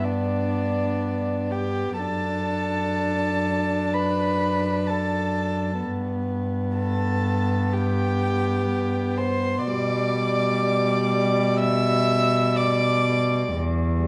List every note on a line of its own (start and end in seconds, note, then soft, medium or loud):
0.00 1.96 G2 soft
0.00 2.00 B3 soft
0.04 1.52 D4 soft
0.04 1.53 D5 soft
1.50 1.99 G4 soft
1.50 1.98 G5 soft
1.98 5.84 F#2 soft
1.98 5.83 D4 soft
1.98 3.95 A4 medium
1.98 3.96 A5 medium
3.94 4.91 B4 soft
3.94 4.89 B5 medium
4.87 5.83 A4 soft
4.87 5.82 A5 medium
5.83 9.65 G2 soft
5.83 9.69 B3 soft
6.77 7.74 A4 soft
6.77 7.75 A5 medium
7.73 9.19 G4 soft
7.73 9.19 G5 medium
9.17 9.64 C5 medium
9.17 9.69 C6 medium
9.65 13.51 B2 medium
9.65 13.56 G3 soft
9.65 11.60 D5 soft
9.65 11.59 D6 medium
11.58 12.57 E5 medium
11.58 12.59 E6 medium
12.56 13.55 D5 medium
12.56 13.56 D6 medium
13.54 14.07 E2 medium
14.02 14.07 G3 soft